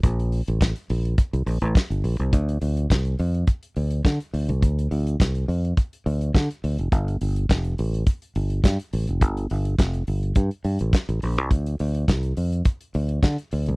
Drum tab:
HH |xxoxxxoxxxoxxxox|xxoxxxoxxxoxxxox|xxoxxxoxxxoxxxox|xxoxxxoxxxoxxxox|
SD |----o-------o---|----o-------o---|----o-------o---|----o-------o---|
BD |o---o---o---o---|o---o---o---o---|o---o---o---o---|o---o---o---o---|

HH |xxoxxxoxxxoxxxox|xxoxxxoxxxoxxxox|
SD |----o-------o---|----o-------o---|
BD |o---o---o---o---|o---o---o---o---|